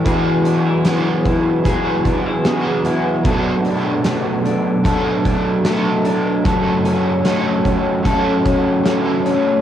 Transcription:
0.00 0.14 A3 medium
0.00 0.14 D4 medium
0.04 0.83 E3 medium
0.04 3.25 E3 medium
0.04 9.61 F#3 medium
0.04 6.41 B3 medium
0.04 0.86 B3 medium
0.04 3.22 E4 medium
0.04 0.87 F#4 medium
0.04 3.22 G#4 medium
0.04 1.65 G#4 medium
0.04 0.87 G#4 medium
0.04 6.41 B4 medium
0.04 kick medium
0.04 closed hi-hat medium
0.45 0.67 D4 medium
0.45 closed hi-hat medium
0.67 1.25 E4 soft
0.84 1.63 E3 medium
0.84 2.46 B3 soft
0.84 1.66 B3 medium
0.84 1.67 F#4 medium
0.84 snare medium
0.84 closed hi-hat medium
0.89 1.67 G#4 medium
1.25 2.06 E4 medium
1.25 kick medium
1.25 closed hi-hat soft
1.64 2.43 E3 medium
1.64 2.46 B3 medium
1.64 2.47 F#4 medium
1.64 3.26 G#4 medium
1.64 kick medium
1.64 closed hi-hat medium
1.69 2.47 G#4 medium
2.05 2.26 D4 medium
2.05 kick medium
2.05 closed hi-hat soft
2.26 2.85 E4 soft
2.44 3.25 E3 medium
2.44 3.27 B3 medium
2.44 4.05 B3 medium
2.44 3.29 F#4 medium
2.44 snare loud
2.44 closed hi-hat medium
2.49 3.27 G#4 medium
2.85 3.34 E4 medium
2.85 closed hi-hat soft
3.23 4.84 B2 medium
3.23 6.45 B2 medium
3.23 4.83 F#3 medium
3.23 6.42 D4 medium
3.23 9.61 A4 medium
3.23 4.85 A4 medium
3.23 kick loud
3.23 closed hi-hat medium
3.27 4.85 A3 medium
3.27 4.86 D4 medium
3.27 4.88 A4 medium
3.65 4.44 D4 medium
3.65 closed hi-hat medium
4.04 5.65 A3 medium
4.04 snare loud
4.04 closed hi-hat medium
4.45 5.23 D4 medium
4.45 closed hi-hat soft
4.84 5.63 F#3 medium
4.84 5.65 A3 medium
4.84 5.65 D4 medium
4.84 6.46 A4 medium
4.84 kick medium
4.84 closed hi-hat medium
4.89 5.68 A4 medium
5.25 6.04 D4 medium
5.25 kick medium
5.25 closed hi-hat soft
5.64 6.45 F#3 medium
5.64 6.46 A3 medium
5.64 7.25 A3 medium
5.64 6.46 D4 medium
5.64 snare loud
5.64 closed hi-hat medium
5.68 6.47 A4 medium
6.05 6.53 D4 medium
6.05 closed hi-hat soft
6.44 7.25 F#2 medium
6.44 9.61 F#2 medium
6.44 7.25 C#3 medium
6.44 7.22 F#3 medium
6.44 9.61 A3 medium
6.44 7.25 A3 medium
6.44 9.61 C#4 medium
6.44 7.25 C#4 medium
6.44 8.05 A4 medium
6.44 7.28 A4 medium
6.44 9.61 C#5 medium
6.44 kick loud
6.44 closed hi-hat medium
6.85 7.64 C#4 medium
6.85 closed hi-hat soft
7.23 8.02 F#3 medium
7.23 8.04 A3 medium
7.23 8.85 A3 medium
7.23 8.05 C#4 medium
7.23 snare medium
7.23 closed hi-hat medium
7.28 8.07 A4 medium
7.65 8.44 C#4 medium
7.65 kick medium
7.65 closed hi-hat soft
8.03 8.82 F#3 medium
8.03 8.85 A3 medium
8.03 8.86 C#4 medium
8.03 9.61 A4 medium
8.03 kick medium
8.03 closed hi-hat medium
8.08 8.88 A4 medium
8.45 9.24 C#4 medium
8.45 kick medium
8.45 closed hi-hat soft
8.83 9.61 F#3 medium
8.83 9.61 A3 medium
8.83 9.61 C#4 medium
8.83 snare loud
8.83 closed hi-hat medium
8.88 9.61 A4 medium
9.25 9.61 C#4 medium
9.25 closed hi-hat soft

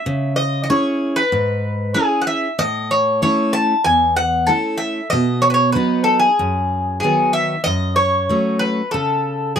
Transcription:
0.00 0.36 E5 medium
0.06 0.68 C#3 medium
0.36 0.62 D#5 medium
0.64 0.69 D#5 medium
0.70 1.21 C#4 soft
0.70 1.21 E4 soft
0.70 1.21 G#4 soft
0.70 1.14 C#5 medium
1.16 1.94 B4 medium
1.32 1.94 G#2 medium
1.94 2.46 C#4 soft
1.94 2.46 E4 soft
1.94 2.21 G#4 medium
1.94 2.47 G#4 soft
2.22 2.27 F#5 medium
2.27 2.59 E5 medium
2.59 3.20 A2 medium
2.59 2.92 D#5 loud
2.91 3.21 C#5 medium
3.22 3.73 A3 soft
3.22 3.73 C#4 soft
3.22 3.74 E4 medium
3.22 3.52 C#5 medium
3.53 3.83 A5 loud
3.84 4.47 E2 medium
3.84 4.15 G#5 medium
4.16 4.50 F#5 loud
4.47 5.00 A3 soft
4.47 5.00 C#4 soft
4.47 5.00 E4 medium
4.47 4.77 A4 medium
4.78 5.09 E5 medium
5.10 5.74 B2 medium
5.10 5.44 D#5 loud
5.42 5.50 C#5 medium
5.50 5.54 B4 medium
5.54 5.72 C#5 medium
5.72 6.27 F#3 soft
5.72 6.27 B3 soft
5.72 6.27 D#4 medium
5.72 6.03 B4 medium
6.04 6.19 A4 medium
6.19 6.97 G#4 medium
6.39 7.01 F#2 medium
7.00 7.55 D#3 medium
7.00 7.54 F#3 soft
7.00 7.31 G#4 medium
7.05 7.55 B3 soft
7.33 7.63 E5 medium
7.64 8.28 F#2 medium
7.64 7.95 D#5 loud
7.96 8.63 C#5 medium
8.29 8.81 F#3 soft
8.29 8.81 A3 soft
8.29 8.81 C#4 medium
8.59 8.90 B4 medium
8.91 9.55 C#3 medium
8.91 9.52 A4 medium
9.56 9.60 F#3 soft
9.56 9.60 G#4 medium

